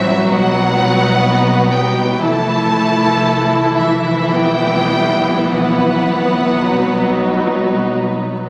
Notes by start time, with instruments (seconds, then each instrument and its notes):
Already playing: double bass section A1, cello section E3, viola section F#3 C4, violin section E4 F#4 E5
0.27 double bass section B1, cello section F#3, viola section B3, violin section D#4 B4 F#5
1.72 cello section G3, violin section G5
2.19 double bass section C2, viola section E3 E4, cello section A3, violin section E4 A4 A5
3.77 cello section E3, violin section E5
4.33 double bass section B1, cello section G3, viola section B3, violin section B4 G5
5.48 cello section F#3, violin section F#5
6.62 viola section F#3, violin section D#4